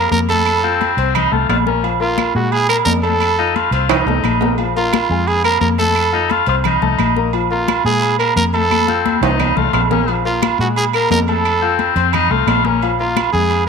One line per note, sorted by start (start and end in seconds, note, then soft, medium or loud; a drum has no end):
0.00 0.23 A#3 medium
0.00 0.11 A#4 medium
0.00 0.23 A#4 medium
0.00 0.23 A#5 medium
0.11 0.92 F2 medium
0.11 0.19 A#4 loud
0.11 high conga medium
0.29 0.57 A3 medium
0.29 0.58 A4 medium
0.29 0.94 A4 loud
0.29 0.58 A5 medium
0.29 high conga medium
0.29 low agogo medium
0.46 low agogo loud
0.46 claves medium
0.63 1.16 C4 loud
0.63 0.92 F4 medium
0.63 0.92 F5 medium
0.63 0.92 F6 medium
0.63 high conga soft
0.81 high conga medium
0.81 low agogo medium
0.97 1.29 C2 medium
0.97 1.26 C4 medium
0.97 1.27 C5 medium
0.97 1.27 C6 medium
0.97 high conga soft
0.97 low agogo medium
1.15 1.34 D#4 medium
1.15 high conga soft
1.15 low conga medium
1.15 low agogo loud
1.15 claves medium
1.32 1.48 C2 medium
1.32 1.60 A3 medium
1.32 1.49 F4 medium
1.32 1.61 A4 medium
1.32 1.61 A5 medium
1.32 high conga soft
1.49 2.29 A#1 medium
1.49 1.57 F4 loud
1.49 high conga medium
1.49 low timbale medium
1.49 low agogo medium
1.49 claves medium
1.66 1.81 A#3 medium
1.66 1.90 C#4 medium
1.66 1.81 A#4 medium
1.66 1.81 A#5 medium
1.66 high conga medium
1.83 1.97 F3 medium
1.83 1.98 F4 medium
1.83 1.98 F5 medium
1.83 high conga soft
1.83 low agogo medium
2.00 2.29 A#3 medium
2.00 2.33 F4 loud
2.00 2.29 A#4 medium
2.00 2.29 A#5 medium
2.00 high conga soft
2.18 high conga loud
2.18 low agogo loud
2.18 claves medium
2.35 2.83 A#2 loud
2.35 2.63 G#3 medium
2.35 2.54 F#4 medium
2.35 2.63 G#4 medium
2.35 2.64 G#5 medium
2.35 high conga soft
2.52 2.68 G#4 loud
2.52 high conga soft
2.52 low agogo loud
2.69 2.98 A#3 medium
2.69 2.77 A#4 loud
2.69 2.98 A#4 medium
2.69 2.98 A#5 medium
2.69 high conga soft
2.69 low agogo loud
2.69 claves medium
2.85 3.67 F2 medium
2.85 2.93 A#4 loud
2.85 high conga medium
2.85 low timbale medium
3.03 3.32 A3 medium
3.03 3.68 A4 loud
3.03 3.32 A4 medium
3.03 3.32 A5 medium
3.03 low agogo medium
3.20 high conga soft
3.20 low agogo loud
3.20 claves medium
3.38 3.57 D#4 loud
3.38 3.67 F4 medium
3.38 3.67 F5 medium
3.38 3.67 F6 medium
3.38 high conga soft
3.55 3.73 F4 loud
3.55 high conga medium
3.55 low agogo medium
3.71 4.04 C2 loud
3.71 4.01 C4 medium
3.71 3.92 F4 loud
3.71 4.01 C5 medium
3.71 4.01 C6 medium
3.71 high conga soft
3.71 low agogo medium
3.89 4.59 D#4 medium
3.89 high conga soft
3.89 low conga medium
3.89 high timbale loud
3.89 low agogo loud
3.89 claves medium
4.06 4.23 C2 medium
4.06 4.35 A3 medium
4.06 4.35 A4 medium
4.06 4.35 A5 medium
4.06 high conga soft
4.06 low conga medium
4.06 low timbale medium
4.23 5.04 A#1 medium
4.23 high conga medium
4.23 low agogo loud
4.23 claves medium
4.41 4.56 A#3 medium
4.41 4.56 A#4 medium
4.41 4.56 A#5 medium
4.41 high conga medium
4.41 low timbale loud
4.58 4.73 F3 medium
4.58 4.73 F4 medium
4.58 4.73 F5 medium
4.58 high conga soft
4.58 low agogo medium
4.76 5.04 A#3 medium
4.76 5.29 F4 loud
4.76 5.04 A#4 medium
4.76 5.05 A#5 medium
4.76 high conga soft
4.93 high conga loud
4.93 low agogo loud
4.93 claves medium
5.10 5.58 F2 loud
5.10 5.39 G#3 medium
5.10 5.39 G#4 medium
5.10 5.39 G#5 medium
5.10 high conga soft
5.27 5.44 G#4 loud
5.27 high conga soft
5.27 low agogo medium
5.44 5.73 A#3 medium
5.44 5.73 A#4 medium
5.44 5.60 A#4 loud
5.44 5.73 A#5 medium
5.44 high conga soft
5.44 low agogo loud
5.44 claves medium
5.61 6.42 F2 loud
5.61 5.69 A#4 medium
5.61 high conga medium
5.78 6.07 A3 medium
5.78 6.07 A4 medium
5.78 6.44 A4 loud
5.78 6.07 A5 medium
5.78 high conga medium
5.78 low agogo medium
5.95 low agogo loud
5.95 claves medium
6.13 6.32 D#4 loud
6.13 6.41 F4 medium
6.13 6.41 F5 medium
6.13 6.41 F6 medium
6.13 high conga soft
6.30 6.48 F4 loud
6.30 high conga medium
6.30 low agogo medium
6.46 6.79 C2 loud
6.46 6.76 C4 medium
6.46 6.56 F4 loud
6.46 6.76 C5 medium
6.46 6.76 C6 medium
6.46 high conga soft
6.46 low agogo medium
6.64 7.30 D#4 medium
6.64 high conga soft
6.64 low conga medium
6.64 low agogo loud
6.64 claves medium
6.82 6.98 C2 medium
6.82 7.10 A3 medium
6.82 7.10 A4 medium
6.82 7.10 A5 medium
6.82 high conga soft
6.82 low conga medium
6.99 7.79 A#1 medium
6.99 high conga medium
6.99 low agogo loud
6.99 claves medium
7.16 7.30 A#3 medium
7.16 7.31 A#4 medium
7.16 7.31 A#5 medium
7.16 high conga medium
7.33 7.47 F3 medium
7.33 7.48 F4 medium
7.33 7.48 F5 medium
7.33 high conga soft
7.33 low agogo medium
7.51 7.79 A#3 medium
7.51 7.83 F4 medium
7.51 7.79 A#4 medium
7.51 7.79 A#5 medium
7.51 high conga soft
7.68 high conga loud
7.68 low agogo loud
7.68 claves medium
7.85 8.33 A#2 loud
7.85 8.13 G#3 medium
7.85 8.17 G#4 loud
7.85 8.13 G#4 medium
7.85 8.14 G#5 medium
7.85 high conga soft
8.02 high conga soft
8.02 low agogo loud
8.19 8.48 A#3 medium
8.19 8.35 A#4 loud
8.19 8.48 A#4 medium
8.19 8.48 A#5 medium
8.19 high conga soft
8.19 low agogo loud
8.19 claves medium
8.36 9.16 F2 loud
8.36 8.44 A#4 loud
8.36 high conga medium
8.54 8.82 A3 medium
8.54 8.82 A4 medium
8.54 9.19 A4 loud
8.54 8.82 A5 medium
8.54 low agogo medium
8.71 high conga medium
8.71 low agogo loud
8.71 claves medium
8.88 9.24 C4 medium
8.88 9.16 F4 medium
8.88 9.16 F5 medium
8.88 9.16 F6 medium
8.88 high conga medium
9.06 high conga loud
9.06 low agogo medium
9.21 9.54 C2 medium
9.21 9.50 C4 medium
9.21 9.58 D#4 medium
9.21 9.50 C5 medium
9.21 9.50 C6 medium
9.21 low conga medium
9.21 high timbale medium
9.21 low agogo medium
9.39 low conga medium
9.39 low timbale medium
9.39 low agogo loud
9.39 claves medium
9.56 9.72 C2 medium
9.56 9.85 A3 medium
9.56 9.73 F4 medium
9.56 9.85 A4 medium
9.56 9.85 A5 medium
9.56 low conga medium
9.73 10.53 A#1 medium
9.73 9.81 F4 loud
9.73 low conga medium
9.73 low timbale medium
9.73 low agogo medium
9.73 claves medium
9.90 10.04 A#3 medium
9.90 10.15 C#4 medium
9.90 10.05 A#4 medium
9.90 10.05 A#5 medium
9.90 low conga loud
9.90 low timbale medium
10.08 10.22 F3 medium
10.08 10.22 F4 medium
10.08 10.22 F5 medium
10.08 high conga soft
10.08 low agogo medium
10.25 10.53 A#3 medium
10.25 10.58 F4 medium
10.25 10.53 A#4 medium
10.25 10.54 A#5 medium
10.25 high conga soft
10.42 high conga loud
10.42 low agogo loud
10.42 claves medium
10.59 11.07 A#2 loud
10.59 10.88 G#3 medium
10.59 10.68 F#4 medium
10.59 10.88 G#4 medium
10.59 10.88 G#5 medium
10.59 high conga soft
10.76 10.85 G#4 loud
10.76 high conga soft
10.76 low agogo medium
10.93 11.22 A#3 medium
10.93 11.22 A#4 medium
10.93 11.10 A#4 loud
10.93 11.22 A#5 medium
10.93 high conga soft
10.93 low agogo medium
10.93 claves medium
11.11 11.91 F2 loud
11.11 11.19 A#4 loud
11.11 high conga medium
11.11 low timbale medium
11.28 11.56 A3 medium
11.28 11.93 A4 loud
11.28 11.57 A4 medium
11.28 11.57 A5 medium
11.28 low agogo medium
11.45 high conga soft
11.45 low agogo loud
11.45 claves medium
11.62 12.15 C4 loud
11.62 11.91 F4 medium
11.62 11.91 F5 medium
11.62 11.91 F6 medium
11.62 high conga soft
11.79 high conga medium
11.79 low agogo medium
11.96 12.28 F2 loud
11.96 12.25 C4 medium
11.96 12.25 C5 medium
11.96 12.25 C6 medium
11.96 high conga soft
11.96 low agogo medium
12.13 12.32 D#4 loud
12.13 high conga soft
12.13 low conga medium
12.13 low agogo loud
12.13 claves medium
12.30 12.46 C2 medium
12.30 12.59 A3 medium
12.30 12.48 F4 loud
12.30 12.59 A4 medium
12.30 12.59 A5 medium
12.30 high conga soft
12.47 13.28 A#1 medium
12.47 12.67 F4 loud
12.47 high conga medium
12.47 low timbale medium
12.47 low agogo loud
12.47 claves medium
12.65 12.79 A#3 medium
12.65 12.91 C#4 medium
12.65 12.79 A#4 medium
12.65 12.80 A#5 medium
12.65 high conga medium
12.82 12.97 F3 medium
12.82 12.97 F4 medium
12.82 12.97 F5 medium
12.82 high conga soft
12.82 low agogo medium
12.99 13.28 A#3 medium
12.99 13.32 F4 medium
12.99 13.28 A#4 medium
12.99 13.28 A#5 medium
12.99 high conga soft
13.17 high conga loud
13.17 low agogo loud
13.17 claves medium
13.33 13.69 F2 loud
13.33 13.62 G#3 medium
13.33 13.65 G#4 loud
13.33 13.62 G#4 medium
13.33 13.62 G#5 medium
13.33 high conga soft
13.50 high conga soft
13.50 low agogo medium